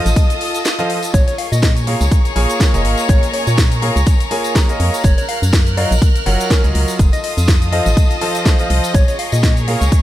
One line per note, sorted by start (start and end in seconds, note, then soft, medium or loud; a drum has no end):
0.00 2.43 F4 medium
0.00 1.12 A4 medium
0.00 0.61 D#5 loud
0.00 1.84 D#5 medium
0.00 1.12 F5 medium
0.00 1.14 A5 medium
0.00 1.12 D#6 medium
0.06 0.14 A1 loud
0.06 closed hi-hat soft
0.06 tambourine medium
0.06 shaker medium
0.16 kick loud
0.16 closed hi-hat medium
0.16 tambourine medium
0.16 shaker medium
0.30 closed hi-hat medium
0.30 tambourine soft
0.30 shaker soft
0.41 open hi-hat loud
0.54 closed hi-hat soft
0.54 tambourine medium
0.54 shaker medium
0.65 snare loud
0.65 closed hi-hat medium
0.65 tambourine medium
0.65 shaker medium
0.79 0.96 F3 medium
0.79 0.96 F4 medium
0.79 0.96 A4 medium
0.79 0.96 C5 medium
0.79 0.96 D#5 medium
0.79 0.96 F5 medium
0.79 closed hi-hat medium
0.79 tambourine soft
0.79 shaker soft
0.90 open hi-hat loud
1.03 closed hi-hat soft
1.03 tambourine medium
1.03 shaker medium
1.14 1.24 A#1 loud
1.14 5.83 G#4 medium
1.14 6.95 A#4 medium
1.14 1.23 C#5 medium
1.14 5.00 G#5 medium
1.14 5.00 C#6 medium
1.14 kick loud
1.14 closed hi-hat medium
1.14 tambourine medium
1.14 shaker medium
1.28 1.34 C#5 medium
1.28 closed hi-hat medium
1.28 tambourine soft
1.28 shaker soft
1.38 1.49 F5 medium
1.38 open hi-hat loud
1.43 5.70 C#5 medium
1.52 1.96 A#2 medium
1.52 1.59 D#5 medium
1.52 tambourine medium
1.52 shaker medium
1.63 kick loud
1.63 snare loud
1.63 closed hi-hat medium
1.63 shaker medium
1.68 6.99 A#5 medium
1.76 closed hi-hat medium
1.76 tambourine soft
1.76 shaker soft
1.87 2.00 A#3 medium
1.87 2.00 F4 medium
1.87 2.00 G#4 medium
1.87 2.00 A#4 medium
1.87 2.00 C#5 medium
1.87 2.00 F5 medium
1.87 open hi-hat loud
2.01 2.09 C#2 loud
2.01 closed hi-hat soft
2.01 tambourine medium
2.01 shaker medium
2.11 kick loud
2.11 closed hi-hat medium
2.11 shaker medium
2.25 closed hi-hat medium
2.25 tambourine soft
2.25 shaker soft
2.36 2.46 A#1 loud
2.36 2.58 A#3 medium
2.36 2.58 F4 medium
2.36 2.58 G#4 medium
2.36 2.58 A#4 medium
2.36 2.58 C#5 medium
2.36 2.58 G#5 loud
2.36 open hi-hat loud
2.50 closed hi-hat soft
2.50 tambourine medium
2.50 shaker medium
2.60 2.72 A#3 medium
2.60 2.72 F4 medium
2.60 2.72 G#4 medium
2.60 2.72 A#4 medium
2.60 2.72 C#5 medium
2.60 2.72 A#5 loud
2.60 kick loud
2.60 snare loud
2.60 closed hi-hat medium
2.60 tambourine medium
2.60 shaker medium
2.74 2.86 F1 medium
2.74 3.80 A#3 medium
2.74 3.80 F4 medium
2.74 3.80 G#4 medium
2.74 3.80 A#4 medium
2.74 3.80 C#5 medium
2.74 3.80 D#5 medium
2.74 closed hi-hat medium
2.74 tambourine soft
2.74 shaker soft
2.85 2.95 G#1 medium
2.85 open hi-hat loud
2.97 tambourine medium
2.97 shaker medium
3.09 3.19 A#1 loud
3.09 3.25 C#5 medium
3.09 kick loud
3.09 closed hi-hat medium
3.09 tambourine medium
3.09 shaker medium
3.23 closed hi-hat medium
3.23 tambourine soft
3.23 shaker soft
3.34 3.42 C#5 medium
3.34 open hi-hat loud
3.47 3.91 A#2 medium
3.47 3.54 C#5 medium
3.47 tambourine medium
3.47 shaker medium
3.58 kick loud
3.58 snare loud
3.58 closed hi-hat medium
3.58 tambourine medium
3.58 shaker medium
3.72 closed hi-hat medium
3.72 tambourine soft
3.72 shaker soft
3.82 3.95 A#3 medium
3.82 3.95 F4 medium
3.82 3.95 G#4 medium
3.82 3.95 A#4 medium
3.82 3.95 C#5 medium
3.82 3.95 F5 medium
3.82 open hi-hat loud
3.96 4.04 C#2 loud
3.96 closed hi-hat soft
3.96 tambourine medium
3.96 shaker medium
4.06 kick loud
4.06 closed hi-hat medium
4.06 tambourine medium
4.06 shaker medium
4.20 closed hi-hat medium
4.20 tambourine soft
4.20 shaker soft
4.31 4.53 A#3 medium
4.31 4.53 F4 medium
4.31 4.53 G#4 medium
4.31 4.53 A#4 medium
4.31 4.53 C#5 medium
4.31 4.53 G#5 loud
4.31 open hi-hat loud
4.44 closed hi-hat soft
4.44 tambourine medium
4.44 shaker medium
4.55 4.67 A#3 medium
4.55 4.67 F4 medium
4.55 4.67 G#4 medium
4.55 4.67 A#4 medium
4.55 4.67 C#5 medium
4.55 4.67 A#5 loud
4.55 kick loud
4.55 snare loud
4.55 closed hi-hat medium
4.55 tambourine medium
4.55 shaker medium
4.69 5.03 A#3 medium
4.69 5.03 F4 medium
4.69 5.03 G#4 medium
4.69 5.03 A#4 medium
4.69 5.03 C#5 medium
4.69 5.03 D#5 medium
4.69 closed hi-hat medium
4.69 tambourine soft
4.69 shaker soft
4.80 4.90 F2 medium
4.80 open hi-hat loud
4.94 tambourine medium
4.94 shaker medium
5.04 5.15 F#1 loud
5.04 6.99 A#4 medium
5.04 5.13 C#5 medium
5.04 6.97 F6 medium
5.04 6.97 F#6 medium
5.04 kick loud
5.04 closed hi-hat medium
5.04 tambourine medium
5.04 shaker medium
5.18 5.25 C#5 medium
5.18 closed hi-hat medium
5.18 tambourine soft
5.18 shaker soft
5.29 5.39 F5 medium
5.29 open hi-hat loud
5.42 5.86 F#2 medium
5.42 tambourine medium
5.42 shaker medium
5.53 kick loud
5.53 snare loud
5.53 closed hi-hat medium
5.53 tambourine medium
5.53 shaker medium
5.66 closed hi-hat medium
5.66 tambourine soft
5.66 shaker soft
5.77 5.90 F#3 medium
5.77 5.90 F4 medium
5.77 5.90 F#4 medium
5.77 5.90 A#4 medium
5.77 5.90 C#5 medium
5.77 5.93 D#5 medium
5.77 5.90 F5 medium
5.77 open hi-hat loud
5.91 5.99 A#1 loud
5.91 closed hi-hat soft
5.91 tambourine medium
5.91 shaker medium
6.02 kick loud
6.02 closed hi-hat medium
6.02 tambourine medium
6.02 shaker medium
6.15 closed hi-hat medium
6.15 tambourine soft
6.15 shaker soft
6.26 6.37 F#1 loud
6.26 6.48 F#3 medium
6.26 6.48 F4 medium
6.26 6.48 F#4 medium
6.26 6.48 A#4 medium
6.26 6.48 C#5 medium
6.26 6.48 F#5 medium
6.26 open hi-hat loud
6.40 closed hi-hat soft
6.40 tambourine medium
6.40 shaker medium
6.50 6.62 F#3 medium
6.50 6.62 F#4 medium
6.50 6.66 A#4 loud
6.50 6.62 A#4 medium
6.50 6.62 C#5 medium
6.50 6.62 G#5 loud
6.50 kick loud
6.50 snare loud
6.50 closed hi-hat medium
6.50 tambourine medium
6.50 shaker medium
6.64 6.72 C#2 medium
6.64 6.98 F#3 medium
6.64 6.98 F4 medium
6.64 6.98 F#4 medium
6.64 6.98 A#4 medium
6.64 6.98 C#5 medium
6.64 6.98 D#5 medium
6.64 closed hi-hat medium
6.64 tambourine soft
6.64 shaker soft
6.75 6.85 C#2 medium
6.75 open hi-hat loud
6.88 tambourine medium
6.88 shaker medium
6.99 7.10 F1 loud
6.99 9.56 F4 medium
6.99 8.93 A4 medium
6.99 8.93 F5 medium
6.99 8.93 D#6 medium
6.99 kick loud
6.99 closed hi-hat medium
6.99 tambourine medium
6.99 shaker medium
7.13 7.20 D#5 medium
7.13 closed hi-hat medium
7.13 tambourine soft
7.13 shaker soft
7.24 7.32 D#5 medium
7.24 10.02 D#5 medium
7.24 open hi-hat loud
7.37 7.81 F2 medium
7.37 tambourine medium
7.37 shaker medium
7.48 kick loud
7.48 snare loud
7.48 closed hi-hat medium
7.48 tambourine medium
7.48 shaker medium
7.57 8.94 A5 medium
7.62 closed hi-hat medium
7.62 tambourine soft
7.62 shaker soft
7.72 7.85 F3 medium
7.72 7.85 F4 medium
7.72 7.85 A4 medium
7.72 7.85 C5 medium
7.72 7.85 D#5 medium
7.72 8.41 D#5 loud
7.72 7.85 F5 medium
7.72 open hi-hat loud
7.86 7.94 A1 loud
7.86 closed hi-hat soft
7.86 tambourine medium
7.86 shaker medium
7.97 kick loud
7.97 closed hi-hat medium
7.97 tambourine medium
7.97 shaker medium
8.11 closed hi-hat medium
8.11 tambourine soft
8.11 shaker soft
8.21 8.43 F3 medium
8.21 8.43 F4 medium
8.21 8.43 A4 medium
8.21 8.43 C5 medium
8.21 8.43 D#5 medium
8.21 8.43 A5 loud
8.21 open hi-hat loud
8.35 closed hi-hat soft
8.35 tambourine medium
8.35 shaker medium
8.45 8.57 F3 medium
8.45 8.57 F4 medium
8.45 8.57 A4 medium
8.45 8.57 C5 medium
8.45 8.57 D#5 medium
8.45 8.57 F5 medium
8.45 kick loud
8.45 snare loud
8.45 closed hi-hat medium
8.45 tambourine medium
8.45 shaker medium
8.58 8.93 F3 medium
8.58 8.93 F4 medium
8.58 8.93 A4 medium
8.58 8.93 C5 medium
8.58 8.93 D#5 medium
8.58 8.93 F5 medium
8.58 closed hi-hat soft
8.58 tambourine soft
8.58 shaker soft
8.70 8.80 C2 medium
8.70 open hi-hat loud
8.84 tambourine medium
8.84 shaker medium
8.94 9.05 A#1 loud
8.94 10.02 G#4 loud
8.94 10.02 A#4 medium
8.94 9.03 C#5 medium
8.94 10.02 G#5 medium
8.94 10.02 C#6 medium
8.94 kick loud
8.94 closed hi-hat medium
8.94 tambourine medium
8.94 shaker medium
9.08 9.15 C#5 medium
9.08 10.02 C#5 medium
9.08 closed hi-hat medium
9.08 tambourine soft
9.08 shaker soft
9.19 9.30 F5 medium
9.19 open hi-hat loud
9.32 9.76 A#2 medium
9.32 9.39 D#5 medium
9.32 tambourine medium
9.32 shaker medium
9.43 9.52 D#5 medium
9.43 kick loud
9.43 snare loud
9.43 closed hi-hat medium
9.43 tambourine medium
9.43 shaker medium
9.51 10.02 A#5 medium
9.56 closed hi-hat medium
9.56 tambourine soft
9.56 shaker soft
9.68 9.80 A#3 medium
9.68 9.80 F4 medium
9.68 9.80 G#4 medium
9.68 9.80 A#4 medium
9.68 9.80 C#5 medium
9.68 9.80 F5 medium
9.68 open hi-hat loud
9.81 9.89 C#2 loud
9.81 closed hi-hat soft
9.81 tambourine medium
9.81 shaker medium
9.92 kick loud
9.92 closed hi-hat medium
9.92 tambourine medium
9.92 shaker medium